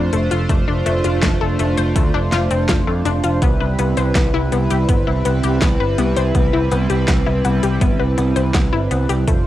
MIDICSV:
0, 0, Header, 1, 5, 480
1, 0, Start_track
1, 0, Key_signature, 0, "major"
1, 0, Tempo, 731707
1, 325, Time_signature, 4, 2, 24, 8
1, 6211, End_track
2, 0, Start_track
2, 0, Title_t, "Analog synth pad"
2, 0, Program_c, 0, 89
2, 0, Note_on_c, 0, 57, 86
2, 0, Note_on_c, 0, 62, 75
2, 0, Note_on_c, 0, 65, 77
2, 0, Note_on_c, 0, 72, 93
2, 2219, Note_off_c, 0, 57, 0
2, 2219, Note_off_c, 0, 62, 0
2, 2219, Note_off_c, 0, 65, 0
2, 2219, Note_off_c, 0, 72, 0
2, 2245, Note_on_c, 0, 55, 82
2, 2245, Note_on_c, 0, 60, 77
2, 2245, Note_on_c, 0, 64, 77
2, 2245, Note_on_c, 0, 71, 91
2, 6058, Note_off_c, 0, 64, 0
2, 6059, Note_off_c, 0, 55, 0
2, 6059, Note_off_c, 0, 60, 0
2, 6059, Note_off_c, 0, 71, 0
2, 6084, Note_on_c, 0, 57, 85
2, 6084, Note_on_c, 0, 62, 76
2, 6084, Note_on_c, 0, 65, 76
2, 6084, Note_on_c, 0, 72, 95
2, 6211, Note_off_c, 0, 57, 0
2, 6211, Note_off_c, 0, 62, 0
2, 6211, Note_off_c, 0, 65, 0
2, 6211, Note_off_c, 0, 72, 0
2, 6211, End_track
3, 0, Start_track
3, 0, Title_t, "Synth arpeggio sound"
3, 0, Program_c, 1, 84
3, 86, Note_on_c, 1, 57, 76
3, 183, Note_off_c, 1, 57, 0
3, 205, Note_on_c, 1, 65, 77
3, 264, Note_off_c, 1, 65, 0
3, 325, Note_on_c, 1, 57, 81
3, 384, Note_off_c, 1, 57, 0
3, 445, Note_on_c, 1, 62, 76
3, 542, Note_off_c, 1, 62, 0
3, 565, Note_on_c, 1, 57, 78
3, 679, Note_off_c, 1, 57, 0
3, 686, Note_on_c, 1, 65, 75
3, 799, Note_off_c, 1, 65, 0
3, 805, Note_on_c, 1, 57, 102
3, 903, Note_off_c, 1, 57, 0
3, 925, Note_on_c, 1, 69, 80
3, 1039, Note_off_c, 1, 69, 0
3, 1045, Note_on_c, 1, 57, 79
3, 1159, Note_off_c, 1, 57, 0
3, 1165, Note_on_c, 1, 72, 77
3, 1262, Note_off_c, 1, 72, 0
3, 1285, Note_on_c, 1, 57, 85
3, 1382, Note_off_c, 1, 57, 0
3, 1405, Note_on_c, 1, 62, 106
3, 1463, Note_off_c, 1, 62, 0
3, 1525, Note_on_c, 1, 65, 103
3, 1584, Note_off_c, 1, 65, 0
3, 1645, Note_on_c, 1, 60, 78
3, 1759, Note_off_c, 1, 60, 0
3, 1765, Note_on_c, 1, 65, 86
3, 1863, Note_off_c, 1, 65, 0
3, 1885, Note_on_c, 1, 57, 77
3, 1982, Note_off_c, 1, 57, 0
3, 2005, Note_on_c, 1, 62, 104
3, 2102, Note_off_c, 1, 62, 0
3, 2125, Note_on_c, 1, 65, 79
3, 2222, Note_off_c, 1, 65, 0
3, 2245, Note_on_c, 1, 59, 102
3, 2342, Note_off_c, 1, 59, 0
3, 2365, Note_on_c, 1, 71, 77
3, 2479, Note_off_c, 1, 71, 0
3, 2485, Note_on_c, 1, 59, 78
3, 2599, Note_off_c, 1, 59, 0
3, 2605, Note_on_c, 1, 72, 79
3, 2703, Note_off_c, 1, 72, 0
3, 2725, Note_on_c, 1, 59, 83
3, 2822, Note_off_c, 1, 59, 0
3, 2845, Note_on_c, 1, 64, 107
3, 2903, Note_off_c, 1, 64, 0
3, 2965, Note_on_c, 1, 59, 80
3, 3062, Note_off_c, 1, 59, 0
3, 3085, Note_on_c, 1, 67, 79
3, 3143, Note_off_c, 1, 67, 0
3, 3205, Note_on_c, 1, 59, 87
3, 3263, Note_off_c, 1, 59, 0
3, 3325, Note_on_c, 1, 64, 81
3, 3422, Note_off_c, 1, 64, 0
3, 3445, Note_on_c, 1, 59, 77
3, 3559, Note_off_c, 1, 59, 0
3, 3565, Note_on_c, 1, 67, 79
3, 3679, Note_off_c, 1, 67, 0
3, 3685, Note_on_c, 1, 59, 102
3, 3782, Note_off_c, 1, 59, 0
3, 3805, Note_on_c, 1, 71, 78
3, 3919, Note_off_c, 1, 71, 0
3, 3925, Note_on_c, 1, 59, 81
3, 4039, Note_off_c, 1, 59, 0
3, 4045, Note_on_c, 1, 72, 77
3, 4142, Note_off_c, 1, 72, 0
3, 4165, Note_on_c, 1, 59, 84
3, 4262, Note_off_c, 1, 59, 0
3, 4285, Note_on_c, 1, 64, 101
3, 4343, Note_off_c, 1, 64, 0
3, 4405, Note_on_c, 1, 59, 76
3, 4502, Note_off_c, 1, 59, 0
3, 4525, Note_on_c, 1, 67, 75
3, 4583, Note_off_c, 1, 67, 0
3, 4645, Note_on_c, 1, 59, 82
3, 4703, Note_off_c, 1, 59, 0
3, 4765, Note_on_c, 1, 64, 78
3, 4862, Note_off_c, 1, 64, 0
3, 4884, Note_on_c, 1, 59, 80
3, 4999, Note_off_c, 1, 59, 0
3, 5004, Note_on_c, 1, 67, 77
3, 5119, Note_off_c, 1, 67, 0
3, 5124, Note_on_c, 1, 59, 102
3, 5222, Note_off_c, 1, 59, 0
3, 5244, Note_on_c, 1, 71, 78
3, 5359, Note_off_c, 1, 71, 0
3, 5364, Note_on_c, 1, 59, 76
3, 5479, Note_off_c, 1, 59, 0
3, 5484, Note_on_c, 1, 72, 79
3, 5582, Note_off_c, 1, 72, 0
3, 5604, Note_on_c, 1, 59, 84
3, 5702, Note_off_c, 1, 59, 0
3, 5724, Note_on_c, 1, 64, 103
3, 5783, Note_off_c, 1, 64, 0
3, 5844, Note_on_c, 1, 59, 79
3, 5942, Note_off_c, 1, 59, 0
3, 5964, Note_on_c, 1, 67, 78
3, 6023, Note_off_c, 1, 67, 0
3, 6084, Note_on_c, 1, 57, 87
3, 6143, Note_off_c, 1, 57, 0
3, 6211, End_track
4, 0, Start_track
4, 0, Title_t, "Picked electric bass"
4, 0, Program_c, 2, 34
4, 86, Note_on_c, 2, 29, 93
4, 179, Note_off_c, 2, 29, 0
4, 206, Note_on_c, 2, 29, 85
4, 299, Note_off_c, 2, 29, 0
4, 325, Note_on_c, 2, 29, 101
4, 419, Note_off_c, 2, 29, 0
4, 446, Note_on_c, 2, 29, 78
4, 539, Note_off_c, 2, 29, 0
4, 566, Note_on_c, 2, 29, 95
4, 659, Note_off_c, 2, 29, 0
4, 685, Note_on_c, 2, 29, 87
4, 779, Note_off_c, 2, 29, 0
4, 805, Note_on_c, 2, 29, 99
4, 899, Note_off_c, 2, 29, 0
4, 925, Note_on_c, 2, 29, 78
4, 1019, Note_off_c, 2, 29, 0
4, 1045, Note_on_c, 2, 29, 96
4, 1139, Note_off_c, 2, 29, 0
4, 1165, Note_on_c, 2, 29, 84
4, 1259, Note_off_c, 2, 29, 0
4, 1285, Note_on_c, 2, 38, 101
4, 1379, Note_off_c, 2, 38, 0
4, 1405, Note_on_c, 2, 29, 80
4, 1499, Note_off_c, 2, 29, 0
4, 1525, Note_on_c, 2, 29, 96
4, 1619, Note_off_c, 2, 29, 0
4, 1644, Note_on_c, 2, 29, 82
4, 1738, Note_off_c, 2, 29, 0
4, 1765, Note_on_c, 2, 29, 104
4, 1859, Note_off_c, 2, 29, 0
4, 1885, Note_on_c, 2, 41, 74
4, 1979, Note_off_c, 2, 41, 0
4, 2005, Note_on_c, 2, 29, 94
4, 2099, Note_off_c, 2, 29, 0
4, 2125, Note_on_c, 2, 29, 83
4, 2219, Note_off_c, 2, 29, 0
4, 2245, Note_on_c, 2, 36, 96
4, 2339, Note_off_c, 2, 36, 0
4, 2365, Note_on_c, 2, 36, 76
4, 2459, Note_off_c, 2, 36, 0
4, 2485, Note_on_c, 2, 36, 96
4, 2579, Note_off_c, 2, 36, 0
4, 2605, Note_on_c, 2, 36, 84
4, 2699, Note_off_c, 2, 36, 0
4, 2725, Note_on_c, 2, 36, 99
4, 2819, Note_off_c, 2, 36, 0
4, 2845, Note_on_c, 2, 36, 80
4, 2939, Note_off_c, 2, 36, 0
4, 2965, Note_on_c, 2, 36, 93
4, 3059, Note_off_c, 2, 36, 0
4, 3085, Note_on_c, 2, 36, 86
4, 3179, Note_off_c, 2, 36, 0
4, 3204, Note_on_c, 2, 31, 100
4, 3298, Note_off_c, 2, 31, 0
4, 3325, Note_on_c, 2, 36, 79
4, 3419, Note_off_c, 2, 36, 0
4, 3446, Note_on_c, 2, 36, 92
4, 3539, Note_off_c, 2, 36, 0
4, 3565, Note_on_c, 2, 36, 86
4, 3659, Note_off_c, 2, 36, 0
4, 3684, Note_on_c, 2, 36, 104
4, 3779, Note_off_c, 2, 36, 0
4, 3806, Note_on_c, 2, 31, 79
4, 3899, Note_off_c, 2, 31, 0
4, 3926, Note_on_c, 2, 36, 96
4, 4019, Note_off_c, 2, 36, 0
4, 4046, Note_on_c, 2, 36, 85
4, 4139, Note_off_c, 2, 36, 0
4, 4164, Note_on_c, 2, 36, 101
4, 4259, Note_off_c, 2, 36, 0
4, 4286, Note_on_c, 2, 36, 79
4, 4379, Note_off_c, 2, 36, 0
4, 4406, Note_on_c, 2, 36, 97
4, 4499, Note_off_c, 2, 36, 0
4, 4525, Note_on_c, 2, 36, 87
4, 4619, Note_off_c, 2, 36, 0
4, 4644, Note_on_c, 2, 36, 100
4, 4739, Note_off_c, 2, 36, 0
4, 4765, Note_on_c, 2, 36, 80
4, 4859, Note_off_c, 2, 36, 0
4, 4885, Note_on_c, 2, 36, 97
4, 4979, Note_off_c, 2, 36, 0
4, 5005, Note_on_c, 2, 36, 85
4, 5099, Note_off_c, 2, 36, 0
4, 5125, Note_on_c, 2, 31, 102
4, 5219, Note_off_c, 2, 31, 0
4, 5245, Note_on_c, 2, 36, 82
4, 5339, Note_off_c, 2, 36, 0
4, 5366, Note_on_c, 2, 36, 92
4, 5459, Note_off_c, 2, 36, 0
4, 5485, Note_on_c, 2, 36, 84
4, 5579, Note_off_c, 2, 36, 0
4, 5605, Note_on_c, 2, 36, 108
4, 5699, Note_off_c, 2, 36, 0
4, 5725, Note_on_c, 2, 31, 79
4, 5819, Note_off_c, 2, 31, 0
4, 5845, Note_on_c, 2, 36, 99
4, 5939, Note_off_c, 2, 36, 0
4, 5965, Note_on_c, 2, 36, 85
4, 6059, Note_off_c, 2, 36, 0
4, 6085, Note_on_c, 2, 29, 103
4, 6179, Note_off_c, 2, 29, 0
4, 6211, End_track
5, 0, Start_track
5, 0, Title_t, "Drums"
5, 85, Note_on_c, 9, 42, 69
5, 150, Note_off_c, 9, 42, 0
5, 205, Note_on_c, 9, 42, 69
5, 271, Note_off_c, 9, 42, 0
5, 325, Note_on_c, 9, 36, 126
5, 325, Note_on_c, 9, 42, 89
5, 390, Note_off_c, 9, 36, 0
5, 390, Note_off_c, 9, 42, 0
5, 565, Note_on_c, 9, 42, 66
5, 631, Note_off_c, 9, 42, 0
5, 685, Note_on_c, 9, 42, 69
5, 750, Note_off_c, 9, 42, 0
5, 805, Note_on_c, 9, 36, 117
5, 805, Note_on_c, 9, 38, 126
5, 805, Note_on_c, 9, 42, 93
5, 870, Note_off_c, 9, 36, 0
5, 870, Note_off_c, 9, 38, 0
5, 870, Note_off_c, 9, 42, 0
5, 1045, Note_on_c, 9, 42, 70
5, 1110, Note_off_c, 9, 42, 0
5, 1165, Note_on_c, 9, 42, 66
5, 1231, Note_off_c, 9, 42, 0
5, 1285, Note_on_c, 9, 36, 127
5, 1285, Note_on_c, 9, 42, 95
5, 1350, Note_off_c, 9, 36, 0
5, 1351, Note_off_c, 9, 42, 0
5, 1525, Note_on_c, 9, 38, 64
5, 1525, Note_on_c, 9, 42, 66
5, 1590, Note_off_c, 9, 38, 0
5, 1590, Note_off_c, 9, 42, 0
5, 1645, Note_on_c, 9, 42, 62
5, 1710, Note_off_c, 9, 42, 0
5, 1764, Note_on_c, 9, 38, 121
5, 1764, Note_on_c, 9, 42, 90
5, 1765, Note_on_c, 9, 36, 121
5, 1830, Note_off_c, 9, 36, 0
5, 1830, Note_off_c, 9, 38, 0
5, 1830, Note_off_c, 9, 42, 0
5, 2005, Note_on_c, 9, 42, 66
5, 2070, Note_off_c, 9, 42, 0
5, 2124, Note_on_c, 9, 42, 65
5, 2190, Note_off_c, 9, 42, 0
5, 2244, Note_on_c, 9, 42, 86
5, 2245, Note_on_c, 9, 36, 122
5, 2310, Note_off_c, 9, 36, 0
5, 2310, Note_off_c, 9, 42, 0
5, 2485, Note_on_c, 9, 42, 66
5, 2550, Note_off_c, 9, 42, 0
5, 2604, Note_on_c, 9, 42, 65
5, 2670, Note_off_c, 9, 42, 0
5, 2724, Note_on_c, 9, 38, 121
5, 2724, Note_on_c, 9, 42, 94
5, 2725, Note_on_c, 9, 36, 117
5, 2790, Note_off_c, 9, 36, 0
5, 2790, Note_off_c, 9, 38, 0
5, 2790, Note_off_c, 9, 42, 0
5, 2964, Note_on_c, 9, 42, 65
5, 3030, Note_off_c, 9, 42, 0
5, 3084, Note_on_c, 9, 42, 63
5, 3150, Note_off_c, 9, 42, 0
5, 3204, Note_on_c, 9, 36, 127
5, 3204, Note_on_c, 9, 42, 91
5, 3270, Note_off_c, 9, 36, 0
5, 3270, Note_off_c, 9, 42, 0
5, 3444, Note_on_c, 9, 42, 65
5, 3510, Note_off_c, 9, 42, 0
5, 3564, Note_on_c, 9, 42, 62
5, 3630, Note_off_c, 9, 42, 0
5, 3684, Note_on_c, 9, 36, 121
5, 3684, Note_on_c, 9, 38, 115
5, 3684, Note_on_c, 9, 42, 90
5, 3750, Note_off_c, 9, 36, 0
5, 3750, Note_off_c, 9, 38, 0
5, 3750, Note_off_c, 9, 42, 0
5, 3924, Note_on_c, 9, 42, 62
5, 3990, Note_off_c, 9, 42, 0
5, 4044, Note_on_c, 9, 42, 62
5, 4110, Note_off_c, 9, 42, 0
5, 4164, Note_on_c, 9, 36, 115
5, 4164, Note_on_c, 9, 42, 88
5, 4230, Note_off_c, 9, 36, 0
5, 4230, Note_off_c, 9, 42, 0
5, 4405, Note_on_c, 9, 42, 62
5, 4470, Note_off_c, 9, 42, 0
5, 4525, Note_on_c, 9, 42, 65
5, 4590, Note_off_c, 9, 42, 0
5, 4644, Note_on_c, 9, 38, 115
5, 4644, Note_on_c, 9, 42, 93
5, 4645, Note_on_c, 9, 36, 115
5, 4710, Note_off_c, 9, 36, 0
5, 4710, Note_off_c, 9, 38, 0
5, 4710, Note_off_c, 9, 42, 0
5, 4885, Note_on_c, 9, 42, 67
5, 4950, Note_off_c, 9, 42, 0
5, 5005, Note_on_c, 9, 42, 63
5, 5070, Note_off_c, 9, 42, 0
5, 5124, Note_on_c, 9, 42, 89
5, 5125, Note_on_c, 9, 36, 119
5, 5190, Note_off_c, 9, 36, 0
5, 5190, Note_off_c, 9, 42, 0
5, 5364, Note_on_c, 9, 42, 65
5, 5430, Note_off_c, 9, 42, 0
5, 5484, Note_on_c, 9, 42, 64
5, 5550, Note_off_c, 9, 42, 0
5, 5604, Note_on_c, 9, 38, 115
5, 5604, Note_on_c, 9, 42, 90
5, 5605, Note_on_c, 9, 36, 117
5, 5670, Note_off_c, 9, 36, 0
5, 5670, Note_off_c, 9, 38, 0
5, 5670, Note_off_c, 9, 42, 0
5, 5845, Note_on_c, 9, 42, 65
5, 5910, Note_off_c, 9, 42, 0
5, 5965, Note_on_c, 9, 42, 62
5, 6031, Note_off_c, 9, 42, 0
5, 6085, Note_on_c, 9, 36, 118
5, 6085, Note_on_c, 9, 42, 91
5, 6150, Note_off_c, 9, 36, 0
5, 6151, Note_off_c, 9, 42, 0
5, 6211, End_track
0, 0, End_of_file